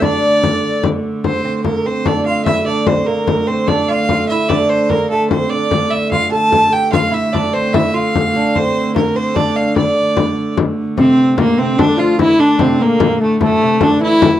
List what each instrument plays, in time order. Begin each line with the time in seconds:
Already playing: hurdy-gurdy D3 A3
0.01 lute D4, recorder D5, fiddle D5, frame drum
0.23 frame drum
0.43 frame drum
0.63 frame drum
0.83 frame drum
1.04 frame drum
1.24 hurdy-gurdy D3 A3, lute C4, fiddle C5, frame drum
1.44 lute C4, frame drum
1.64 lute A#3, fiddle A#4, frame drum
1.85 lute C4, fiddle C5, frame drum
2.06 lute D4, fiddle D5, frame drum
2.26 lute F4, fiddle F5
2.45 lute E4, fiddle E5, frame drum
2.66 lute D4, fiddle D5, frame drum
2.87 lute C4, fiddle C5, frame drum
3.06 lute A#3, fiddle A#4, frame drum
3.27 frame drum
3.47 lute C4, fiddle C5
3.68 lute D4, fiddle D5, frame drum
3.88 lute F4, fiddle F5, frame drum
4.09 lute F4, frame drum
4.28 lute E4, fiddle E5, frame drum
4.49 lute D4, fiddle D5, frame drum
4.69 fiddle C5
4.90 lute A#3, fiddle A#4, frame drum
5.10 lute A3, fiddle A4
5.30 lute C4, fiddle C5, frame drum
5.50 lute D4, fiddle D5
5.71 frame drum
5.90 lute E4, fiddle E5, frame drum
6.11 hurdy-gurdy D3 A3, lute F4, fiddle F5, frame drum
6.32 lute A4, fiddle A5, frame drum
6.52 lute A4, frame drum
6.67 lute A4
6.73 lute G4, fiddle G5, frame drum
6.92 lute F4, fiddle F5, frame drum
7.11 lute E4, fiddle E5
7.32 lute D4, fiddle D5, frame drum
7.53 lute C4, fiddle C5, frame drum
7.73 lute E4, fiddle E5, frame drum
7.94 lute F4, fiddle F5, frame drum
8.15 frame drum
8.36 lute D4
8.55 lute C4, fiddle C5, frame drum
8.76 frame drum
8.94 lute A#3, fiddle A#4, frame drum
9.15 lute C4, fiddle C5, frame drum
9.35 lute D4, fiddle D5, frame drum
9.56 fiddle F5
9.76 lute D4, fiddle D5, frame drum
10.17 frame drum
10.37 frame drum
10.57 frame drum
10.97 lute C3, hurdy-gurdy D3 A3, recorder C4, fiddle C4, frame drum
11.18 frame drum
11.38 lute A#2, recorder A#3, fiddle A#3, frame drum
11.58 lute C3, recorder C4, fiddle C4, frame drum
11.78 lute D3, recorder D4, fiddle D4, frame drum
11.97 lute F3, recorder F4, fiddle F4
12.18 lute E3, recorder E4, fiddle E4, frame drum
12.39 lute D3, recorder D4, fiddle D4, frame drum
12.59 lute C3, fiddle C4, frame drum
12.80 lute A#2, recorder A#3, fiddle A#3, frame drum
13.00 lute A#2, frame drum
13.20 lute A2, recorder A3, fiddle A3
13.40 lute A2, recorder A3, fiddle A3, frame drum
13.62 lute C3
13.81 lute D3, recorder D4, fiddle D4, frame drum
13.99 lute E3, recorder E4, fiddle E4, frame drum
14.20 lute E3, frame drum